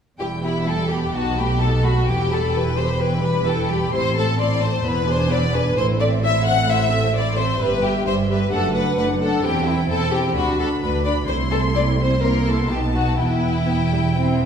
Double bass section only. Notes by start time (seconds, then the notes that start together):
0.20 E1
1.14 B1
2.07 E1
3.93 A1
4.85 E1
5.77 A1
7.60 G1
8.06 G1
8.52 F#1
8.97 F#1
9.44 E1
9.89 E1
10.36 D2
10.82 D2
11.28 C2
12.70 B1
13.19 E1